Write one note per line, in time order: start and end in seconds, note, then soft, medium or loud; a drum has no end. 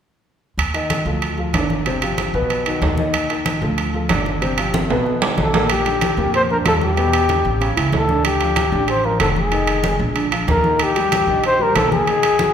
0.58 1.03 D#2 medium
0.58 high conga soft
0.58 high timbale medium
0.74 1.01 D#3 medium
0.74 1.01 D#4 medium
0.74 1.01 D#5 medium
0.74 high conga soft
0.74 high timbale medium
0.90 high conga medium
0.90 high timbale medium
0.90 low timbale soft
1.05 1.51 D2 medium
1.05 1.33 F3 medium
1.05 1.33 F4 medium
1.05 1.33 A4 medium
1.05 high conga soft
1.22 high conga soft
1.22 high timbale medium
1.38 1.52 F3 medium
1.38 1.52 F4 medium
1.38 1.52 A4 medium
1.38 high conga soft
1.53 2.28 G1 medium
1.53 1.81 D3 medium
1.53 1.81 D4 medium
1.53 1.81 D5 medium
1.53 high conga medium
1.53 high timbale medium
1.53 low timbale medium
1.70 high conga medium
1.86 2.00 C3 medium
1.86 2.00 C4 medium
1.86 2.00 C5 medium
1.86 high conga soft
1.86 high timbale medium
2.02 2.29 F3 medium
2.02 2.29 F4 medium
2.02 2.29 G4 medium
2.02 high conga soft
2.02 high timbale medium
2.18 high conga medium
2.18 high timbale medium
2.18 low timbale soft
2.34 2.79 B1 medium
2.34 2.61 B2 medium
2.34 2.61 B3 medium
2.34 2.61 B4 medium
2.50 high conga soft
2.50 high timbale medium
2.66 2.93 D#3 medium
2.66 2.93 D#4 medium
2.66 2.93 F#4 medium
2.66 high conga soft
2.66 high timbale medium
2.82 3.56 D#2 medium
2.82 high conga medium
2.82 low timbale medium
2.97 3.25 D#3 medium
2.97 3.25 D#4 medium
2.97 3.25 D#5 medium
2.97 high conga medium
3.13 high conga soft
3.13 high timbale medium
3.30 3.57 D#3 medium
3.30 3.57 D#4 medium
3.30 3.57 D#5 medium
3.30 high conga soft
3.30 high timbale medium
3.46 high conga medium
3.46 high timbale medium
3.46 low timbale soft
3.62 4.07 D2 medium
3.62 3.89 F3 medium
3.62 3.89 F4 medium
3.62 3.89 A4 medium
3.62 high conga soft
3.78 high conga soft
3.78 high timbale medium
3.94 4.07 F3 medium
3.94 4.07 F4 medium
3.94 4.08 A4 medium
3.94 high conga soft
4.09 4.85 G1 medium
4.09 4.37 D3 medium
4.09 4.37 D4 medium
4.09 4.37 D5 medium
4.09 high conga medium
4.09 high timbale medium
4.09 low timbale medium
4.26 high conga medium
4.42 4.55 C3 medium
4.42 4.55 C4 medium
4.42 4.55 C5 medium
4.42 high conga soft
4.42 high timbale medium
4.58 4.84 F3 medium
4.58 4.85 F4 medium
4.58 4.85 G4 medium
4.58 high conga soft
4.58 high timbale medium
4.74 high conga medium
4.74 high timbale medium
4.90 5.35 B1 medium
4.90 5.16 B2 medium
4.90 5.17 B3 medium
4.90 5.17 B4 medium
4.90 high timbale medium
5.06 high conga soft
5.22 5.48 D#3 medium
5.22 5.48 F#4 medium
5.22 high conga soft
5.22 low timbale medium
5.38 6.12 A#1 medium
5.38 5.69 A4 medium
5.38 high conga medium
5.38 low timbale medium
5.53 5.67 A#2 medium
5.53 5.67 A#3 medium
5.53 5.67 A#4 medium
5.53 high conga medium
5.53 low timbale medium
5.70 6.31 G4 medium
5.70 high conga soft
5.70 high timbale medium
5.86 6.12 D3 medium
5.86 6.12 D4 medium
5.86 high conga soft
5.86 high timbale medium
6.01 high conga medium
6.01 high timbale medium
6.01 low timbale soft
6.17 6.62 F2 medium
6.17 6.44 A#2 medium
6.17 6.44 A#3 medium
6.17 high conga soft
6.34 6.42 C5 medium
6.34 high conga soft
6.34 high timbale medium
6.50 6.63 D3 medium
6.50 6.63 D4 medium
6.50 6.58 A#4 medium
6.50 high conga soft
6.65 7.40 E2 medium
6.65 6.92 G3 medium
6.65 6.92 F4 medium
6.65 6.74 A4 medium
6.65 high conga medium
6.65 high timbale medium
6.65 low timbale medium
6.81 7.74 G4 medium
6.81 high conga medium
6.97 7.24 B2 medium
6.97 7.24 B3 medium
6.97 high conga soft
6.97 high timbale medium
7.13 high conga soft
7.13 high timbale medium
7.29 7.55 D3 medium
7.29 7.56 D4 medium
7.29 high conga medium
7.29 high timbale medium
7.29 low timbale soft
7.45 7.75 A1 medium
7.61 7.74 C#3 medium
7.61 7.74 C#4 medium
7.61 high conga soft
7.61 high timbale medium
7.76 7.92 C#2 medium
7.76 8.03 E3 medium
7.76 8.03 E4 medium
7.76 high conga soft
7.76 high timbale medium
7.92 8.67 D2 medium
7.92 8.24 A4 medium
7.92 high conga medium
7.92 low timbale medium
8.08 8.35 D3 medium
8.08 8.35 D4 medium
8.08 high conga medium
8.25 8.91 G4 medium
8.25 high conga soft
8.25 high timbale medium
8.40 8.67 F3 medium
8.40 8.67 F4 medium
8.40 high conga soft
8.40 high timbale medium
8.56 high conga medium
8.56 high timbale medium
8.56 low timbale medium
8.72 9.17 A1 medium
8.72 8.99 D3 medium
8.72 8.99 D4 medium
8.72 high conga soft
8.88 9.07 C5 medium
8.88 high conga soft
8.88 high timbale medium
9.04 9.18 F3 medium
9.04 9.18 F4 medium
9.04 9.21 A#4 medium
9.04 high conga soft
9.20 9.94 F1 medium
9.20 9.47 A3 medium
9.20 9.47 A4 medium
9.20 9.28 A4 medium
9.20 high conga medium
9.20 high timbale medium
9.20 low timbale medium
9.36 10.02 G#4 medium
9.36 high conga medium
9.52 9.78 D#3 medium
9.52 9.78 D#4 medium
9.52 high conga soft
9.52 high timbale medium
9.67 high conga soft
9.67 high timbale medium
9.84 10.10 G#3 medium
9.84 10.11 G#4 medium
9.84 high conga medium
9.84 high timbale medium
9.84 low timbale soft
10.00 10.44 A#1 medium
10.16 10.29 D3 medium
10.16 10.29 D4 medium
10.16 high conga soft
10.16 high timbale medium
10.32 10.58 F3 medium
10.32 10.58 F4 medium
10.32 high conga soft
10.32 high timbale medium
10.47 11.22 D#2 medium
10.47 10.84 A#4 medium
10.47 high conga medium
10.47 low timbale medium
10.64 10.90 D#3 medium
10.64 10.90 D#4 medium
10.64 high conga medium
10.79 11.45 G4 medium
10.79 high conga soft
10.79 high timbale medium
10.96 11.22 G3 medium
10.96 11.22 G4 medium
10.96 high conga soft
10.96 high timbale medium
11.12 high conga medium
11.12 high timbale medium
11.12 low timbale soft
11.27 11.71 A#1 medium
11.27 11.54 D#3 medium
11.27 11.54 D#4 medium
11.27 high conga soft
11.44 11.64 C5 medium
11.44 high conga soft
11.44 high timbale medium
11.59 11.72 G3 medium
11.59 11.73 G4 medium
11.59 11.77 A#4 medium
11.59 high conga soft
11.75 12.49 B1 medium
11.75 12.01 A#3 medium
11.75 11.91 A4 medium
11.75 12.01 A#4 medium
11.75 high conga medium
11.75 high timbale medium
11.75 low timbale medium
11.92 12.54 G#4 medium
11.92 high conga medium
12.07 12.33 D#3 medium
12.07 12.33 D#4 medium
12.07 high conga soft
12.07 high timbale medium
12.23 high conga soft
12.23 high timbale medium
12.39 12.54 F#3 medium
12.39 12.54 F#4 medium
12.39 high conga medium
12.39 high timbale medium
12.39 low timbale soft